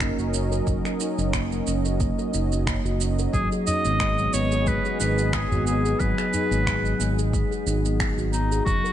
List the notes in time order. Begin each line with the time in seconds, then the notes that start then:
Already playing: F#1 F#3 C#4 A#4 D#5
0.00 A#3, finger snap, kick, shaker
0.19 F#1 F#4, shaker
0.33 C#4, shaker
0.52 A#4, shaker
0.67 F#1 F#3, kick, shaker
0.85 A#4, finger snap, shaker
1.00 D#4, shaker
1.18 F#1 C#4, shaker
1.33 A#3, finger snap, kick, shaker
1.52 F#3, shaker
1.67 F#1 C#4, shaker
1.85 A#4, shaker
2.00 A#3, kick, shaker
2.19 A#4, shaker
2.34 F#1 D#4, shaker
2.52 C#4, shaker
2.67 A#3, finger snap, kick, shaker
2.85 F#1 F#4, shaker
3.01 C#4, shaker
3.19 A#4, shaker
3.34 G#1 F#3 G#4, kick, shaker
3.52 G#4, shaker
3.58 B3
3.67 D#4 D#5, udu, shaker
3.84 G#1 B3 G#4, shaker
4.00 G#3, finger snap, kick, shaker
4.19 F#3, shaker
4.33 G#1 B3 C#5, shaker
4.52 G#4, shaker
4.67 G#3 B4, kick, shaker
4.85 G#4, shaker
5.00 G#1 D#4 B4, shaker
5.19 B3, shaker
5.33 G#3 G#4, finger snap, kick, shaker
5.51 G#1 F#4, udu, shaker
5.66 B3 G#4, shaker
5.85 G#4, shaker
5.99 G#1 F#3 B4, kick, shaker
6.18 G#4, finger snap, shaker
6.33 D#4, udu, shaker
6.51 G#1 B3, shaker
6.67 G#3, finger snap, kick, shaker
6.85 F#3, shaker
7.00 G#1 B3, shaker
7.19 G#4, shaker
7.33 G#3, kick, shaker
7.51 G#4, shaker
7.67 G#1 D#4, shaker
7.85 B3, shaker
8.00 G#3, finger snap, kick, shaker
8.18 G#1 F#4, shaker
8.33 B3 D#4, shaker
8.52 G#4, shaker
8.65 F#1 F#3 F#4, kick, shaker
8.84 C#4 A#4, shaker